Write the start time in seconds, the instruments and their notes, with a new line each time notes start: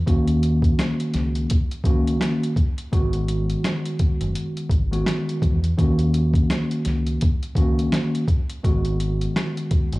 0.06 fingered electric bass D#2, tine electric piano D#3 A#3 C#4 F#4, kick, closed hi-hat
0.28 closed hi-hat
0.43 closed hi-hat
0.62 kick, closed hi-hat
0.79 cross-stick, snare, closed hi-hat
1.00 closed hi-hat
1.14 fingered electric bass C#2, snare, closed hi-hat
1.35 closed hi-hat
1.50 kick, closed hi-hat
1.71 closed hi-hat
1.84 fingered electric bass C#2, tine electric piano D#3 A#3 C#4 F#4, kick, closed hi-hat
2.07 closed hi-hat
2.21 cross-stick, snare, closed hi-hat
2.43 closed hi-hat
2.56 kick, closed hi-hat
2.78 closed hi-hat
2.92 fingered electric bass G#1, tine electric piano D#3 G#3 B3 F#4, kick, closed hi-hat
3.13 closed hi-hat
3.28 closed hi-hat
3.50 closed hi-hat
3.64 cross-stick, snare, closed hi-hat
3.86 closed hi-hat
3.99 kick, closed hi-hat
4.21 fingered electric bass F#1, closed hi-hat
4.35 closed hi-hat
4.57 closed hi-hat
4.70 fingered electric bass G#1, kick, closed hi-hat
4.91 tine electric piano D#3 G#3 B3 F#4, closed hi-hat
5.06 cross-stick, snare, closed hi-hat
5.29 closed hi-hat
5.42 fingered electric bass E2, kick, closed hi-hat
5.64 closed hi-hat
5.77 fingered electric bass D#2, tine electric piano D#3 A#3 C#4 F#4, kick, closed hi-hat
5.99 closed hi-hat
6.14 closed hi-hat
6.34 kick, closed hi-hat
6.50 cross-stick, snare, closed hi-hat
6.71 closed hi-hat
6.85 fingered electric bass C#2, snare, closed hi-hat
7.07 closed hi-hat
7.21 kick, closed hi-hat
7.43 closed hi-hat
7.55 fingered electric bass C#2, tine electric piano D#3 A#3 C#4 F#4, kick, closed hi-hat
7.79 closed hi-hat
7.92 cross-stick, snare, closed hi-hat
8.15 closed hi-hat
8.28 kick, closed hi-hat
8.50 closed hi-hat
8.63 fingered electric bass G#1, tine electric piano D#3 G#3 B3 F#4, kick, closed hi-hat
8.85 closed hi-hat
9.00 closed hi-hat
9.21 closed hi-hat
9.36 cross-stick, snare, closed hi-hat
9.57 closed hi-hat
9.71 kick, closed hi-hat
9.92 fingered electric bass F#1, closed hi-hat